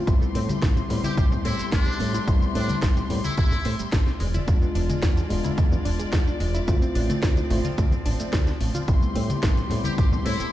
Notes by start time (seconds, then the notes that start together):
0.06 A1 G3 A3 B3 C4 E4 G4 C6, kick, closed hi-hat, shaker
0.21 A3, shaker
0.35 A2 C4, open hi-hat
0.49 G3, muted fingered electric bass stroke, closed hi-hat, high conga, shaker
0.62 A1 A3, kick, snare, closed hi-hat, shaker
0.77 C4, closed hi-hat, shaker
0.89 A2 G3 B3 C4 E4, open hi-hat, low conga
1.04 E4 G4, closed hi-hat, high conga, shaker
1.17 A1 G3 G4, kick, closed hi-hat, shaker
1.32 A3, low conga, shaker
1.45 A2 C4 E4, open hi-hat
1.59 G3, muted fingered electric bass stroke, closed hi-hat, shaker
1.72 A1 A3 D4, kick, snare, closed hi-hat, shaker
1.87 C4, shaker
2.00 A2 G3, open hi-hat
2.14 E4, closed hi-hat, shaker
2.27 A1 G3 B3 C4 E4, kick, closed hi-hat, shaker
2.42 A3, shaker
2.55 A2 C4 D4, open hi-hat
2.69 G3, muted fingered electric bass stroke, closed hi-hat, high conga, shaker
2.82 A1 A3, kick, snare, closed hi-hat, shaker
2.97 C4, closed hi-hat, shaker
3.09 A2 G3 B3 C4 E4, open hi-hat, low conga
3.24 E4, closed hi-hat, high conga, shaker
3.37 A1 G3 E4, kick, closed hi-hat, shaker
3.52 A3, muted fingered electric bass stroke, low conga, shaker
3.65 A2 C4, open hi-hat
3.79 G3, muted fingered electric bass stroke, closed hi-hat, shaker
3.92 A1 A3, kick, snare, closed hi-hat, shaker
4.06 C4, snare, shaker
4.20 E1 G#3 F4 D5, open hi-hat
4.34 E4, closed hi-hat, high conga, shaker
4.47 E2 G#3 B3 D4 F4, kick, closed hi-hat, shaker
4.62 B3, shaker
4.75 E1 D4, open hi-hat
4.90 G#3, muted fingered electric bass stroke, closed hi-hat, high conga, shaker
5.02 E2 B3, kick, snare, closed hi-hat, shaker
5.17 D4, closed hi-hat, shaker
5.29 E1 G#3 B3 D4 F4, open hi-hat, low conga
5.44 E4, closed hi-hat, high conga, shaker
5.58 E2 G#3, kick, closed hi-hat, shaker
5.72 B3, low conga, shaker
5.85 E1 D4, open hi-hat
6.00 G#3, muted fingered electric bass stroke, closed hi-hat, shaker
6.13 E2 B3, kick, snare, closed hi-hat, shaker
6.27 D4, shaker
6.40 E1 G#3, open hi-hat
6.55 E4, closed hi-hat, shaker
6.67 D2 F3 A3 C4 E4 F4, kick, closed hi-hat, shaker
6.82 C4, closed hi-hat, shaker
6.95 A1 D4, open hi-hat
7.10 A3, muted fingered electric bass stroke, closed hi-hat, high conga, shaker
7.23 D2 C4, kick, snare, closed hi-hat, shaker
7.37 D4, closed hi-hat, shaker
7.50 A1 A3 C4 E4 F4, open hi-hat, low conga
7.65 F4, closed hi-hat, high conga, shaker
7.78 D2 A3, kick, closed hi-hat, shaker
7.91 C4, muted fingered electric bass stroke, closed hi-hat, low conga, shaker
8.06 A1 D4, open hi-hat
8.20 A3, muted fingered electric bass stroke, closed hi-hat, shaker
8.33 D2 C4, kick, snare, open hi-hat, shaker
8.47 D4, snare, closed hi-hat, shaker
8.61 A1 A3, open hi-hat
8.74 F4, closed hi-hat, high conga, shaker
8.87 A1 G3 A3 B3 C4 E4 G4 C6, kick, closed hi-hat, shaker
9.02 A3, shaker
9.15 A2 C4, open hi-hat
9.30 G3, muted fingered electric bass stroke, closed hi-hat, high conga, shaker
9.43 A1 A3, kick, snare, closed hi-hat, shaker
9.57 C4, closed hi-hat, shaker
9.70 A2 G3 B3 C4 E4, open hi-hat, low conga
9.84 E4 G4, closed hi-hat, high conga, shaker
9.98 A1 G3 G4, kick, closed hi-hat, shaker
10.12 A3, low conga, shaker
10.26 A2 C4 E4, open hi-hat
10.40 G3, muted fingered electric bass stroke, closed hi-hat, shaker